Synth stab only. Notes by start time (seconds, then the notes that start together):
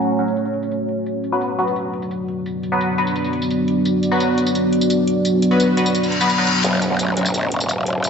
0.19 F#3 C#4 F#4
1.32 F#3 B3 F#4 B4
1.59 F#3 B3 F#4 B4
2.72 F#3 B3 F#4 B4
2.98 F#3 B3 F#4 B4
4.12 F#3 B3 F#4 B4
5.51 F#3 B3 F#4 B4
5.77 F#3 B3 F#4 B4
6.21 F#3 B3 F#4 B4
6.38 F#3 B3 F#4 B4
6.91 F#3 C#4 F#4
7.17 F#3 C#4 F#4